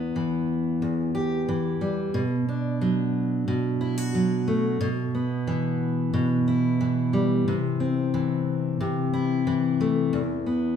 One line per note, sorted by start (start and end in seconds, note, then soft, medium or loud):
0.00 0.81 E2 medium
0.00 2.48 B3 soft
0.00 1.14 E4 medium
0.16 1.47 E3 medium
0.82 2.22 E2 medium
1.15 2.21 G4 medium
1.49 2.22 E3 medium
1.81 2.21 G3 medium
2.14 3.46 B2 medium
2.48 4.88 D4 medium
2.81 4.13 F#3 medium
3.48 4.79 B2 medium
3.81 3.98 E4 medium
3.98 4.88 F#4 medium
4.15 4.88 F#3 medium
4.48 4.88 A3 medium
4.81 6.12 B2 medium
5.15 7.54 B3 medium
5.47 6.80 E3 medium
6.14 7.47 B2 medium
6.48 9.13 E4 medium
6.81 8.13 E3 medium
7.13 7.54 G3 medium
7.48 8.79 C3 medium
7.80 10.20 C4 soft
8.14 9.46 E3 medium
8.81 10.20 C3 medium
9.14 10.76 E4 medium
9.47 10.76 E3 medium
9.81 10.20 A3 medium
10.13 10.76 E2 medium
10.46 10.76 B3 soft